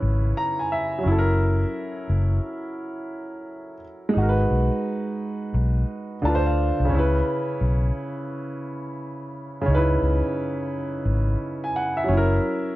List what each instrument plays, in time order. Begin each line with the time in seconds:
Already playing: upright piano C#3 C#4 E4 B4
0.02 fingered electric bass G#1
0.37 upright piano A#5
0.59 upright piano G#5
0.72 upright piano E5
0.99 upright piano F#3
1.03 fingered electric bass F#1, upright piano C#4
1.08 upright piano E4
1.12 upright piano A4
1.19 upright piano A#4
2.10 fingered electric bass F#1
4.09 upright piano G#3
4.14 fingered electric bass G#1, upright piano D#4
4.18 upright piano F#4
4.22 upright piano A#4
4.29 upright piano B4
4.51 fingered electric bass B1
5.54 fingered electric bass B1
6.22 fingered electric bass D2, upright piano D3 D4 A5
6.26 upright piano F4 B4
6.35 upright piano C5
6.46 upright piano F5
6.80 fingered electric bass C2
6.85 upright piano C#3
6.89 fingered electric bass C#2, upright piano C#4
6.94 upright piano E4
6.99 upright piano B4
7.61 fingered electric bass B1
9.62 upright piano C#3
9.66 fingered electric bass C#2, upright piano C#4
9.70 upright piano D#4
9.75 upright piano E4 B4
10.02 fingered electric bass C#2
11.05 fingered electric bass G#1
11.64 upright piano G#5
11.76 upright piano F#5
11.97 upright piano E5
12.04 upright piano F#3
12.08 fingered electric bass F#1, upright piano C#4
12.13 upright piano E4
12.17 upright piano A#4